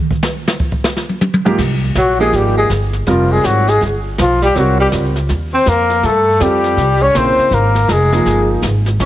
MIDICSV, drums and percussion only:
0, 0, Header, 1, 2, 480
1, 0, Start_track
1, 0, Key_signature, -4, "major"
1, 0, Tempo, 370370
1, 139, Time_signature, 4, 2, 24, 8
1, 11734, End_track
2, 0, Start_track
2, 0, Title_t, "Drums"
2, 137, Note_on_c, 9, 36, 85
2, 266, Note_off_c, 9, 36, 0
2, 295, Note_on_c, 9, 38, 97
2, 425, Note_off_c, 9, 38, 0
2, 615, Note_on_c, 9, 44, 58
2, 616, Note_on_c, 9, 38, 105
2, 745, Note_off_c, 9, 44, 0
2, 746, Note_off_c, 9, 38, 0
2, 774, Note_on_c, 9, 36, 84
2, 903, Note_off_c, 9, 36, 0
2, 934, Note_on_c, 9, 36, 78
2, 1064, Note_off_c, 9, 36, 0
2, 1091, Note_on_c, 9, 38, 91
2, 1221, Note_off_c, 9, 38, 0
2, 1251, Note_on_c, 9, 38, 52
2, 1381, Note_off_c, 9, 38, 0
2, 1415, Note_on_c, 9, 48, 38
2, 1545, Note_off_c, 9, 48, 0
2, 1570, Note_on_c, 9, 44, 58
2, 1571, Note_on_c, 9, 48, 97
2, 1699, Note_off_c, 9, 44, 0
2, 1701, Note_off_c, 9, 48, 0
2, 1732, Note_on_c, 9, 48, 94
2, 1862, Note_off_c, 9, 48, 0
2, 1893, Note_on_c, 9, 48, 103
2, 2022, Note_off_c, 9, 48, 0
2, 2049, Note_on_c, 9, 25, 43
2, 2049, Note_on_c, 9, 38, 42
2, 2049, Note_on_c, 9, 49, 70
2, 2052, Note_on_c, 9, 36, 64
2, 2179, Note_off_c, 9, 38, 0
2, 2179, Note_off_c, 9, 49, 0
2, 2182, Note_off_c, 9, 36, 0
2, 2531, Note_on_c, 9, 44, 50
2, 2532, Note_on_c, 9, 38, 58
2, 2660, Note_off_c, 9, 44, 0
2, 2662, Note_off_c, 9, 38, 0
2, 3012, Note_off_c, 9, 25, 0
2, 3012, Note_on_c, 9, 25, 42
2, 3012, Note_on_c, 9, 38, 38
2, 3142, Note_off_c, 9, 38, 0
2, 3492, Note_on_c, 9, 44, 57
2, 3493, Note_on_c, 9, 38, 55
2, 3621, Note_off_c, 9, 44, 0
2, 3623, Note_off_c, 9, 38, 0
2, 3800, Note_on_c, 9, 38, 40
2, 3929, Note_off_c, 9, 38, 0
2, 3973, Note_off_c, 9, 25, 0
2, 3973, Note_on_c, 9, 25, 46
2, 3973, Note_on_c, 9, 38, 40
2, 4103, Note_off_c, 9, 38, 0
2, 4454, Note_on_c, 9, 44, 60
2, 4455, Note_on_c, 9, 38, 56
2, 4584, Note_off_c, 9, 44, 0
2, 4585, Note_off_c, 9, 38, 0
2, 4762, Note_on_c, 9, 38, 36
2, 4892, Note_off_c, 9, 38, 0
2, 4938, Note_off_c, 9, 25, 0
2, 4938, Note_on_c, 9, 25, 49
2, 4938, Note_on_c, 9, 38, 37
2, 5067, Note_off_c, 9, 38, 0
2, 5419, Note_on_c, 9, 44, 53
2, 5421, Note_on_c, 9, 38, 59
2, 5549, Note_off_c, 9, 44, 0
2, 5550, Note_off_c, 9, 38, 0
2, 5728, Note_on_c, 9, 38, 37
2, 5858, Note_off_c, 9, 38, 0
2, 5902, Note_off_c, 9, 25, 0
2, 5902, Note_on_c, 9, 25, 44
2, 5902, Note_on_c, 9, 38, 44
2, 6032, Note_off_c, 9, 38, 0
2, 6373, Note_on_c, 9, 44, 54
2, 6374, Note_on_c, 9, 38, 58
2, 6503, Note_off_c, 9, 44, 0
2, 6504, Note_off_c, 9, 38, 0
2, 6684, Note_on_c, 9, 38, 38
2, 6813, Note_off_c, 9, 38, 0
2, 6854, Note_off_c, 9, 25, 0
2, 6854, Note_on_c, 9, 25, 47
2, 6854, Note_on_c, 9, 38, 37
2, 6983, Note_off_c, 9, 38, 0
2, 7333, Note_on_c, 9, 44, 54
2, 7334, Note_on_c, 9, 38, 53
2, 7463, Note_off_c, 9, 44, 0
2, 7464, Note_off_c, 9, 38, 0
2, 7642, Note_on_c, 9, 38, 34
2, 7772, Note_off_c, 9, 38, 0
2, 7817, Note_off_c, 9, 25, 0
2, 7817, Note_on_c, 9, 25, 46
2, 7817, Note_on_c, 9, 38, 45
2, 7947, Note_off_c, 9, 38, 0
2, 8297, Note_on_c, 9, 44, 57
2, 8298, Note_on_c, 9, 38, 63
2, 8427, Note_off_c, 9, 44, 0
2, 8428, Note_off_c, 9, 38, 0
2, 8601, Note_on_c, 9, 38, 37
2, 8731, Note_off_c, 9, 38, 0
2, 8777, Note_off_c, 9, 25, 0
2, 8777, Note_on_c, 9, 25, 48
2, 8777, Note_on_c, 9, 38, 40
2, 8906, Note_off_c, 9, 38, 0
2, 9259, Note_on_c, 9, 44, 55
2, 9260, Note_on_c, 9, 38, 60
2, 9388, Note_off_c, 9, 44, 0
2, 9390, Note_off_c, 9, 38, 0
2, 9563, Note_on_c, 9, 38, 37
2, 9693, Note_off_c, 9, 38, 0
2, 9740, Note_off_c, 9, 25, 0
2, 9740, Note_on_c, 9, 25, 52
2, 9740, Note_on_c, 9, 38, 41
2, 9870, Note_off_c, 9, 38, 0
2, 10044, Note_on_c, 9, 38, 40
2, 10173, Note_off_c, 9, 38, 0
2, 10221, Note_on_c, 9, 44, 55
2, 10223, Note_on_c, 9, 38, 60
2, 10351, Note_off_c, 9, 44, 0
2, 10352, Note_off_c, 9, 38, 0
2, 10528, Note_on_c, 9, 38, 37
2, 10657, Note_off_c, 9, 38, 0
2, 10704, Note_off_c, 9, 25, 0
2, 10704, Note_on_c, 9, 25, 40
2, 10704, Note_on_c, 9, 38, 41
2, 10833, Note_off_c, 9, 38, 0
2, 11177, Note_on_c, 9, 44, 62
2, 11178, Note_on_c, 9, 38, 61
2, 11306, Note_off_c, 9, 44, 0
2, 11308, Note_off_c, 9, 38, 0
2, 11484, Note_on_c, 9, 38, 35
2, 11613, Note_off_c, 9, 38, 0
2, 11663, Note_off_c, 9, 25, 0
2, 11663, Note_on_c, 9, 25, 43
2, 11663, Note_on_c, 9, 38, 44
2, 11734, Note_off_c, 9, 25, 0
2, 11734, Note_off_c, 9, 38, 0
2, 11734, End_track
0, 0, End_of_file